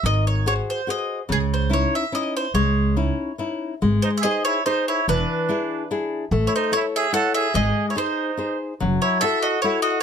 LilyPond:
<<
  \new Staff \with { instrumentName = "Mandolin" } { \time 3/4 \key gis \phrygian \tempo 4 = 144 dis''8 cis''8 cis''8 bis'8 dis''8. r16 | gis'8 bis'8 cis''8 e''8 dis''8 bis'8 | cis''2 r4 | r8 bis'16. e''32 dis''8 cis''8 bis'8 cis''8 |
b'2 r4 | r16. cis''32 bis'8 cis''8 e''8 fis''8 e''8 | \tuplet 3/2 { dis''4~ dis''16 cis''16 } bis'4. r8 | r8 cis''8 e''8 dis''8 cis''8 dis''8 | }
  \new Staff \with { instrumentName = "Muted trumpet" } { \time 3/4 \key gis \phrygian r2. | r2. | r2. | r8 dis'16. gis'32 gis'8 e'8 dis'8 e'8 |
d'2 r4 | r16. e'32 dis'8 e'8 gis'8 a'8 gis'8 | \tuplet 3/2 { gis'4~ gis'16 e'16 } dis'4. r8 | r8 e'8 a'8 fis'8 e'8 fis'8 | }
  \new Staff \with { instrumentName = "Nylon-string guitar" } { \time 3/4 \key gis \phrygian dis4 <fis' gis' bis'>4 <fis' gis' bis'>4 | cis4 <cis' dis' e'>4 <cis' dis' e'>4 | gis4 <cis' dis' e'>4 <cis' dis' e'>4 | gis4 <dis' gis' bis'>4 <dis' gis' bis'>4 |
e4 <d' e' gis'>4 <d' e' gis'>4 | a4 <e' a' cis''>4 <e' a' cis''>4 | gis4 <dis' gis' bis'>4 <dis' gis' bis'>4 | fis4 <e' fis' a'>4 <e' fis' a'>4 | }
  \new Staff \with { instrumentName = "Upright bass" } { \clef bass \time 3/4 \key gis \phrygian gis,,2 r4 | cis,2 r4 | cis,2 r4 | gis,,8 r2 r8 |
e,,8 r2 r8 | a,,8 r2 r8 | gis,,8 r2 r8 | fis,,8 r2 r8 | }
>>